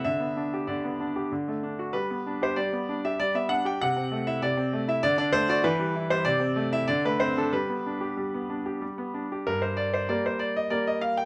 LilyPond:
<<
  \new Staff \with { instrumentName = "Grand piano" } { \time 3/4 \key g \major \tempo 4 = 96 e''4 d''4 r4 | b'8. c''16 d''8. e''16 d''16 e''16 fis''16 g''16 | fis''8. e''16 d''8. e''16 d''16 d''16 c''16 d''16 | b'8. c''16 d''8. e''16 d''16 b'16 c''16 a'16 |
b'2 r4 | \key g \minor bes'16 c''16 d''16 c''16 d''16 c''16 d''16 ees''16 d''16 ees''16 f''16 g''16 | }
  \new Staff \with { instrumentName = "Grand piano" } { \time 3/4 \key g \major d16 b16 d'16 g'16 d16 b16 d'16 g'16 d16 a16 d'16 fis'16 | g16 b16 d'16 g'16 g16 b16 d'16 g'16 g16 b16 d'16 g'16 | c16 c'16 a16 e'16 c16 c'16 a16 e'16 d16 d'16 a16 fis'16 | e16 g16 e'16 g16 c16 c'16 a16 e'16 d16 a16 c'16 d'16 |
g16 b16 d'16 g'16 g16 b16 d'16 g'16 g16 b16 d'16 g'16 | \key g \minor g,4 <g bes bes'>4 <g bes bes'>4 | }
>>